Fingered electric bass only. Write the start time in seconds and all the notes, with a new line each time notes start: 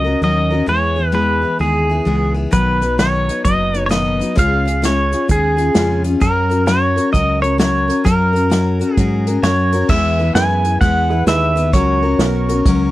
Already playing: C#2
0.21 D#2
0.67 E2
1.60 D#2
2.06 C#2
2.53 B1
3.45 F#1
4.37 C#2
5.29 D#2
5.75 F2
6.22 F#2
7.14 C#2
8.06 F#2
8.97 G#2
9.43 F#2
9.89 E2
10.35 F#2
10.81 E2
11.26 D#2
11.73 C#2
12.18 B1
12.65 C#2